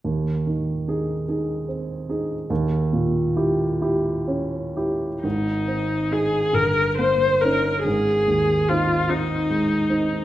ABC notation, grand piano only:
X:1
M:6/8
L:1/8
Q:3/8=48
K:Ab
V:1 name="Grand piano"
E,, E, [EA] [EA] C [EA] | E,, B,, [_FG] [FG] D [FG] | A,,, C E G,,, B, [DE] | A,,, E,, [CE] [CE] A, [CE] |]